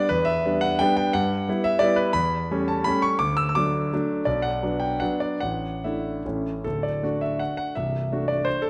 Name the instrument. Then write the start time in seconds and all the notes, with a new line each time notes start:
grand piano
0.09 E2 B4
0.25 E5
0.45 G3 B3 D4
0.61 F#5
0.79 G3 B3 D4 G5
0.97 G5
1.13 G2 F#5
1.48 G3 B3 E4
1.64 E5
1.79 G3 B3 E4 D5
1.96 B4
2.13 E2 B5
2.51 G3 A3 C#4
2.68 A5
2.84 G3 A3 C#4 B5
3.02 C#6
3.19 D2 D6
3.37 E6
3.49 E6
3.55 F#3 A3 D4 D6
3.93 F#3 A3 D4
4.25 B1 D5
4.42 F#5
4.63 F#3 B3 D4
4.80 G5
5.00 F#3 B3 D4 F#5
5.20 D5
5.40 A1 F#5
5.84 A3 D4 E4 E5
6.25 A1 A3 C#4 E4
6.64 D1 D2 A4
6.83 D5
7.03 A3 D4 F#4
7.21 E5
7.39 F#5
7.57 F#5
7.75 C1 C2 E5
8.12 A3 D4 F#4
8.28 D5
8.45 C5
8.62 A4